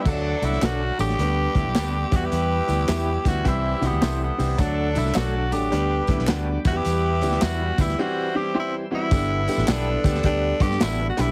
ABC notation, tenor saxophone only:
X:1
M:4/4
L:1/16
Q:"Swing" 1/4=106
K:G
V:1 name="Tenor saxophone"
D2 E2 F2 G8 F G- | G6 F2 E2 B,3 B,3 | D2 E2 F2 G6 z2 F G- | G4 F2 E2 F2 G2 E2 E2- |
E4 D4 D2 G2 E3/2 F/2 E2 |]